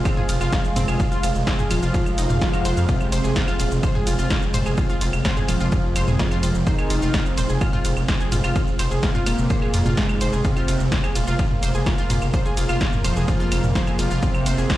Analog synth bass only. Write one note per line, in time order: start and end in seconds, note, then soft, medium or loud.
0.29 0.37 F1 medium
0.41 0.49 F1 medium
0.76 0.85 F1 loud
0.88 0.96 F1 medium
1.23 1.32 F1 loud
1.35 1.44 F1 medium
1.71 1.79 D#1 medium
1.83 1.91 F1 medium
2.18 2.26 F1 medium
2.30 2.38 F1 medium
2.65 2.74 F1 medium
2.77 2.85 F2 medium
3.12 3.21 F1 loud
3.24 3.33 F1 medium
3.60 3.68 D#1 loud
3.72 3.80 F1 medium
4.07 4.15 F1 loud
4.19 4.27 F1 medium
4.54 4.63 F1 medium
4.66 4.74 F1 medium
5.01 5.10 F1 loud
5.13 5.22 F1 medium
5.49 5.57 D#1 loud
5.61 5.69 F1 medium
5.96 6.04 F1 loud
6.08 6.16 F1 medium
6.43 6.52 F1 medium
6.55 6.63 F1 medium
6.90 6.99 F1 medium
7.02 7.11 F1 medium
7.38 7.46 D#1 loud
7.50 7.58 F1 medium
7.85 7.93 F1 loud
7.97 8.05 F1 medium
8.32 8.41 F1 loud
8.44 8.52 F1 medium
8.79 8.88 F1 loud
8.91 9.00 F1 medium
9.27 9.35 D#1 loud
9.38 9.47 F1 medium
9.74 9.82 F2 medium
9.86 9.94 F1 medium
10.21 10.30 F1 medium
10.33 10.41 F1 medium
10.68 10.77 F1 medium
10.80 10.89 F1 medium
11.16 11.24 D#1 loud
11.28 11.36 F1 medium
11.63 11.71 F1 medium
11.75 11.83 F1 medium
12.10 12.18 F1 medium
12.22 12.30 F1 medium
12.57 12.66 F1 medium
12.69 12.78 F1 medium
13.05 13.13 D#1 loud
13.16 13.25 F1 medium
13.52 13.60 F1 loud
13.64 13.72 F1 medium
13.99 14.07 F1 loud
14.11 14.19 F1 medium
14.46 14.55 F1 medium
14.58 14.66 F1 medium